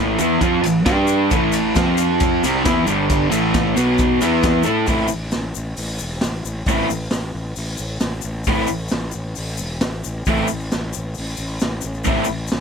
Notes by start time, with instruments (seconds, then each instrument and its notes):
Already playing: fingered electric bass A1, overdriven electric guitar A2 E3 A3
0.18 fingered electric bass E2, overdriven electric guitar E3 B3 E4, ride, shaker
0.41 fingered electric bass F2, overdriven electric guitar F3 C4 F4, kick, ride, shaker
0.62 fingered electric bass A1, overdriven electric guitar A2 E3, ride, shaker
0.84 fingered electric bass G2, overdriven electric guitar G3 D4 G4, kick, snare, ride, shaker
1.07 ride, shaker
1.31 fingered electric bass A1, overdriven electric guitar A2 E3 A3, kick, ride, shaker
1.52 ride, shaker
1.75 fingered electric bass F2, overdriven electric guitar F3 C4 F4, kick, snare, ride, shaker
1.98 ride, shaker
2.20 kick, ride, shaker
2.44 fingered electric bass C2, overdriven electric guitar C3 G3 C4, ride, shaker
2.64 fingered electric bass E2, overdriven electric guitar E3 B3 E4, kick, snare, ride, shaker
2.85 fingered electric bass G1, overdriven electric guitar G2 D3 G3, ride, shaker
3.10 kick, ride, shaker
3.29 fingered electric bass A1, overdriven electric guitar A2 E3 A3, ride, shaker
3.54 kick, snare, ride, shaker
3.75 fingered electric bass B1, overdriven electric guitar B2 F#3 B3, ride, shaker
3.98 kick, ride, shaker
4.21 fingered electric bass E2, overdriven electric guitar E3 B3 E4, ride, shaker
4.43 kick, snare, ride, shaker
4.63 overdriven electric guitar A3 E4 A4, ride, shaker
4.67 fingered electric bass A2
4.86 fingered electric bass A1, overdriven electric guitar A2 E3 A3 C4 E4, kick, open hi-hat, shaker
5.08 shaker
5.12 fingered electric bass A1
5.31 snare, open hi-hat, shaker
5.36 fingered electric bass A1
5.55 fingered electric bass A1, shaker
5.76 fingered electric bass A1, open hi-hat, shaker
5.99 fingered electric bass E1, shaker
6.21 fingered electric bass A1, snare, open hi-hat, shaker
6.45 fingered electric bass A1, shaker
6.66 fingered electric bass A1, overdriven electric guitar A2 E3, kick, open hi-hat, shaker
6.70 overdriven electric guitar A3 C4 E4
6.90 fingered electric bass A1, shaker
7.11 fingered electric bass A1, snare, open hi-hat, shaker
7.34 fingered electric bass A1
7.56 fingered electric bass A1, open hi-hat, shaker
7.77 fingered electric bass A1, shaker
8.00 fingered electric bass A1, snare, open hi-hat, shaker
8.21 fingered electric bass A1, shaker
8.44 fingered electric bass A1, overdriven electric guitar A2 E3, kick, open hi-hat, shaker
8.48 overdriven electric guitar A3 C4 E4
8.67 fingered electric bass A1, shaker
8.88 snare, open hi-hat, shaker
8.92 fingered electric bass A1
9.11 fingered electric bass A1, shaker
9.35 fingered electric bass A1, open hi-hat, shaker
9.57 fingered electric bass E1, shaker
9.81 fingered electric bass A1, snare, open hi-hat, shaker
10.04 fingered electric bass A1, shaker
10.25 fingered electric bass A1, overdriven electric guitar A2 E3 A3 C4, kick, open hi-hat, shaker
10.29 overdriven electric guitar E4
10.48 shaker
10.52 fingered electric bass A1
10.60 shaker
10.72 fingered electric bass A1, snare, open hi-hat, shaker
10.93 fingered electric bass A1, shaker
11.14 fingered electric bass A1, open hi-hat, shaker
11.37 fingered electric bass A1, shaker
11.60 fingered electric bass A1, snare, open hi-hat, shaker
11.81 fingered electric bass A1, shaker
11.94 shaker
12.04 fingered electric bass A1, overdriven electric guitar A2 E3 A3 C4, kick, open hi-hat, shaker
12.08 overdriven electric guitar E4
12.24 shaker
12.29 fingered electric bass A1
12.47 shaker
12.52 fingered electric bass A1, snare, open hi-hat